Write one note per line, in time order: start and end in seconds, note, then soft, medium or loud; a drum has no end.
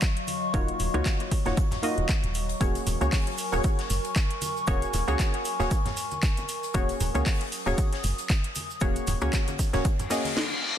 0.00 10.33 F#3 medium
0.00 0.51 A#3 medium
0.00 0.51 D#4 medium
0.00 0.51 F4 medium
0.00 0.51 F#4 medium
0.00 0.52 C#5 medium
0.00 2.57 D#5 medium
0.00 2.57 F5 medium
0.00 2.57 C#6 medium
0.00 kick loud
0.00 snare loud
0.00 clap loud
0.00 closed hi-hat medium
0.00 shaker medium
0.17 closed hi-hat soft
0.27 open hi-hat loud
0.27 high conga medium
0.27 shaker medium
0.54 0.71 D#1 medium
0.54 0.91 A#3 medium
0.54 0.91 D#4 medium
0.54 0.91 F4 medium
0.54 0.91 F#4 medium
0.54 0.91 C#5 loud
0.54 kick loud
0.54 closed hi-hat medium
0.54 shaker medium
0.68 closed hi-hat medium
0.79 0.89 D#1 medium
0.79 open hi-hat loud
0.79 high conga medium
0.79 shaker medium
0.94 1.01 C#2 loud
0.94 1.42 A#3 loud
0.94 1.42 D#4 medium
0.94 1.43 F4 medium
0.94 1.43 F#4 medium
0.94 1.43 C#5 loud
0.94 closed hi-hat soft
1.06 kick loud
1.06 snare loud
1.06 clap loud
1.06 closed hi-hat medium
1.06 shaker medium
1.20 closed hi-hat medium
1.31 kick medium
1.31 open hi-hat loud
1.31 shaker medium
1.46 1.53 D#1 medium
1.46 1.58 A#3 medium
1.46 1.58 D#4 medium
1.46 1.58 F4 medium
1.46 1.58 F#4 medium
1.46 1.58 C#5 medium
1.46 snare soft
1.46 closed hi-hat soft
1.46 low conga medium
1.57 kick loud
1.57 closed hi-hat medium
1.57 shaker medium
1.71 snare soft
1.71 closed hi-hat soft
1.71 low conga medium
1.83 2.58 A#3 medium
1.83 2.58 D#4 medium
1.83 2.58 F4 medium
1.83 2.58 F#4 medium
1.83 2.58 D#5 loud
1.83 open hi-hat loud
1.83 shaker medium
1.98 2.05 D#1 medium
1.98 closed hi-hat soft
1.98 high conga medium
2.08 kick loud
2.08 snare loud
2.08 clap loud
2.08 closed hi-hat medium
2.08 shaker medium
2.24 2.54 D#1 medium
2.24 closed hi-hat soft
2.35 open hi-hat loud
2.35 shaker medium
2.49 closed hi-hat soft
2.60 2.78 D#1 medium
2.60 2.98 A#3 loud
2.60 2.98 C#4 medium
2.60 2.98 F#4 medium
2.60 2.98 G#4 medium
2.60 10.33 A#4 medium
2.60 2.98 C#5 loud
2.60 10.33 G#5 medium
2.60 6.71 C#6 medium
2.60 kick loud
2.60 closed hi-hat medium
2.60 shaker medium
2.75 closed hi-hat soft
2.75 shaker soft
2.86 2.96 D#1 medium
2.86 open hi-hat loud
2.86 muted conga medium
2.86 high conga medium
2.86 low conga medium
2.86 shaker medium
3.01 3.08 C#2 medium
3.01 3.49 A#3 medium
3.01 3.49 C#4 medium
3.01 3.49 F#4 medium
3.01 3.50 G#4 medium
3.01 3.50 C#5 medium
3.01 closed hi-hat soft
3.01 shaker soft
3.13 kick loud
3.13 snare loud
3.13 clap loud
3.13 closed hi-hat medium
3.13 open hi-hat medium
3.13 shaker soft
3.27 closed hi-hat medium
3.38 open hi-hat loud
3.38 shaker medium
3.52 3.60 D#1 medium
3.52 4.65 A#3 medium
3.52 4.65 C#4 medium
3.52 4.65 F#4 medium
3.52 4.65 G#4 medium
3.52 4.65 C#5 medium
3.52 muted conga soft
3.52 low conga medium
3.52 shaker soft
3.64 kick loud
3.64 closed hi-hat medium
3.64 shaker medium
3.78 snare soft
3.78 closed hi-hat soft
3.90 3.99 F#1 loud
3.90 open hi-hat loud
3.90 muted conga soft
3.90 shaker medium
4.05 closed hi-hat soft
4.05 shaker soft
4.16 kick loud
4.16 snare loud
4.16 clap loud
4.16 closed hi-hat medium
4.16 shaker medium
4.31 closed hi-hat soft
4.41 open hi-hat loud
4.41 high conga medium
4.41 shaker loud
4.41 shaker medium
4.57 shaker soft
4.67 4.85 D#1 loud
4.67 5.04 A#3 loud
4.67 5.04 C#4 medium
4.67 5.05 F#4 medium
4.67 5.05 G#4 medium
4.67 5.05 C#5 loud
4.67 kick loud
4.67 closed hi-hat medium
4.67 shaker medium
4.67 shaker soft
4.82 closed hi-hat medium
4.82 shaker soft
4.93 5.03 D#1 medium
4.93 open hi-hat loud
4.93 muted conga medium
4.93 high conga medium
4.93 shaker medium
5.08 5.15 C#2 medium
5.08 5.56 A#3 loud
5.08 5.56 C#4 medium
5.08 5.56 F#4 medium
5.08 5.56 G#4 medium
5.08 5.56 C#5 loud
5.08 closed hi-hat soft
5.08 shaker soft
5.19 kick loud
5.19 snare loud
5.19 clap loud
5.19 closed hi-hat medium
5.19 shaker medium
5.34 closed hi-hat medium
5.45 open hi-hat loud
5.45 shaker medium
5.59 5.67 D#1 medium
5.59 5.71 A#3 medium
5.59 5.71 C#4 medium
5.59 5.72 F#4 medium
5.59 5.72 G#4 medium
5.59 5.72 C#5 loud
5.59 snare soft
5.59 muted conga soft
5.59 low conga medium
5.59 shaker soft
5.71 kick loud
5.71 closed hi-hat medium
5.71 shaker medium
5.85 snare soft
5.85 closed hi-hat soft
5.85 low conga medium
5.97 open hi-hat loud
5.97 shaker medium
6.11 closed hi-hat soft
6.11 high conga medium
6.11 shaker soft
6.23 kick loud
6.23 snare loud
6.23 clap loud
6.23 closed hi-hat medium
6.23 shaker medium
6.37 closed hi-hat medium
6.37 muted conga medium
6.37 shaker soft
6.49 open hi-hat loud
6.49 shaker medium
6.63 closed hi-hat soft
6.63 shaker soft
6.74 6.92 D#1 medium
6.74 7.11 A#3 loud
6.74 7.11 C#4 medium
6.74 7.11 F#4 medium
6.74 7.12 G#4 medium
6.74 7.12 C#5 loud
6.74 10.33 D#6 medium
6.74 kick loud
6.74 closed hi-hat medium
6.74 shaker soft
6.74 shaker medium
6.89 closed hi-hat medium
6.89 closed hi-hat soft
6.89 shaker soft
7.00 7.09 D#1 medium
7.00 open hi-hat loud
7.00 muted conga medium
7.00 high conga medium
7.00 low conga medium
7.00 shaker medium
7.15 7.22 C#2 loud
7.15 7.63 A#3 medium
7.15 7.63 C#4 medium
7.15 7.63 F#4 medium
7.15 7.63 G#4 medium
7.15 7.63 C#5 medium
7.15 closed hi-hat soft
7.15 shaker soft
7.26 kick loud
7.26 snare loud
7.26 clap loud
7.26 closed hi-hat medium
7.26 open hi-hat medium
7.26 shaker soft
7.41 closed hi-hat medium
7.52 open hi-hat loud
7.52 shaker medium
7.66 7.74 D#1 medium
7.66 8.78 A#3 medium
7.66 8.79 C#4 medium
7.66 8.79 F#4 medium
7.66 8.79 G#4 medium
7.66 8.79 C#5 medium
7.66 muted conga medium
7.66 low conga medium
7.66 shaker soft
7.78 kick loud
7.78 closed hi-hat medium
7.78 shaker soft
7.78 shaker medium
7.93 snare soft
7.93 closed hi-hat medium
8.04 8.13 F#1 loud
8.04 open hi-hat loud
8.04 muted conga soft
8.04 shaker medium
8.18 closed hi-hat soft
8.18 shaker soft
8.29 kick loud
8.29 snare loud
8.29 clap loud
8.29 closed hi-hat medium
8.29 shaker medium
8.29 shaker soft
8.44 closed hi-hat medium
8.55 open hi-hat loud
8.55 high conga medium
8.55 shaker medium
8.70 shaker soft
8.81 8.99 D#1 medium
8.81 9.18 A#3 loud
8.81 9.18 C#4 medium
8.81 9.18 F#4 medium
8.81 9.18 G#4 medium
8.81 9.19 C#5 loud
8.81 kick loud
8.81 closed hi-hat medium
8.81 shaker medium
8.81 shaker soft
8.96 closed hi-hat medium
8.96 shaker soft
9.07 9.16 D#1 medium
9.07 open hi-hat loud
9.07 muted conga medium
9.07 high conga medium
9.07 low conga medium
9.07 shaker medium
9.21 9.29 C#2 loud
9.21 9.70 A#3 loud
9.21 9.70 C#4 medium
9.21 9.70 F#4 medium
9.21 9.70 G#4 medium
9.21 9.70 C#5 loud
9.21 closed hi-hat soft
9.21 shaker soft
9.33 kick loud
9.33 snare loud
9.33 clap loud
9.33 closed hi-hat medium
9.33 shaker medium
9.33 shaker soft
9.48 closed hi-hat medium
9.48 high conga medium
9.48 shaker soft
9.59 kick medium
9.59 open hi-hat loud
9.59 shaker medium
9.73 9.81 D#1 medium
9.73 9.85 A#3 medium
9.73 9.85 C#4 medium
9.73 9.85 F#4 medium
9.73 9.85 G#4 medium
9.73 9.86 C#5 loud
9.73 snare soft
9.73 closed hi-hat soft
9.73 muted conga medium
9.73 low conga loud
9.73 shaker soft
9.84 kick loud
9.84 closed hi-hat medium
9.84 reverse cymbal medium
9.84 shaker soft
9.84 shaker medium
9.99 closed hi-hat medium
9.99 low conga medium
9.99 shaker soft
10.10 10.36 A#3 medium
10.10 10.37 C#4 medium
10.10 10.37 F#4 medium
10.10 10.37 G#4 medium
10.10 10.37 D#5 medium
10.10 snare loud
10.10 open hi-hat medium
10.10 open hi-hat loud
10.10 shaker medium
10.24 snare loud
10.24 closed hi-hat soft
10.24 open hi-hat medium
10.24 high conga medium
10.24 shaker soft
10.37 snare loud